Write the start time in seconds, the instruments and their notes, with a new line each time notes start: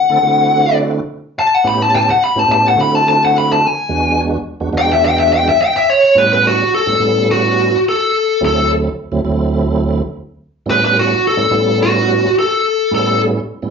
Already playing: lead electric guitar F#5
0.09 tonewheel organ D3 A3 C4 E4 A4
0.23 tonewheel organ D3 A3 C4 E4 F#4
1.39 lead electric guitar A5
1.55 lead electric guitar F#5
1.64 tonewheel organ A2 B3 C#4 E4 G4, lead electric guitar B5
1.82 lead electric guitar A5
1.96 lead electric guitar A5
2.10 lead electric guitar F#5
2.24 lead electric guitar B5
2.35 tonewheel organ A2 B3 C#4 E4 G4, lead electric guitar A5
2.48 tonewheel organ A2 B3 C#4 E4 G4
2.52 lead electric guitar A5
2.68 lead electric guitar F#5
2.77 tonewheel organ D3 A3 C4 E4 F#4
2.81 lead electric guitar B5
2.95 lead electric guitar A5
3.08 lead electric guitar A5
3.25 lead electric guitar F#5
3.38 lead electric guitar B5
3.53 lead electric guitar A5
3.67 lead electric guitar G#5
3.89 tonewheel organ E2 G#3 B3 D4 F#4
4.60 tonewheel organ E2 G#3 B3 D4 F#4
4.73 tonewheel organ E2 G#3 B3 D4 F#4
4.78 lead electric guitar G5
4.93 lead electric guitar E5
5.06 lead electric guitar G5
5.19 lead electric guitar E5
5.33 lead electric guitar G5
5.49 lead electric guitar E5
5.62 lead electric guitar G5
5.77 lead electric guitar E5
5.90 lead electric guitar C#5
6.15 tonewheel organ A2 G3 B3 C#4 E4, lead electric guitar B4
6.33 lead electric guitar B4
6.47 lead electric guitar F#4
6.75 lead electric guitar A4
6.86 tonewheel organ A2 G3 B3 C#4 E4
7.00 tonewheel organ A2 G3 B3 C#4 E4
7.31 lead electric guitar F#4
7.88 lead electric guitar A4
8.41 tonewheel organ D2 F#3 A3 C4 E4
8.45 lead electric guitar A4
9.12 tonewheel organ D2 F#3 A3 C4 E4
9.24 tonewheel organ D2 F#3 A3 C4 E4
10.66 tonewheel organ A2 G3 B3 C#4 E4
10.70 lead electric guitar B4
10.85 lead electric guitar B4
10.99 lead electric guitar F#4
11.27 lead electric guitar A4
11.37 tonewheel organ A2 G3 B3 C#4 E4
11.51 tonewheel organ A2 G3 B3 C#4 E4
11.83 lead electric guitar F#4
12.39 lead electric guitar A4
12.91 tonewheel organ A2 G3 B3 C#4 E4, lead electric guitar A4
13.62 tonewheel organ A2 G3 B3 C#4 E4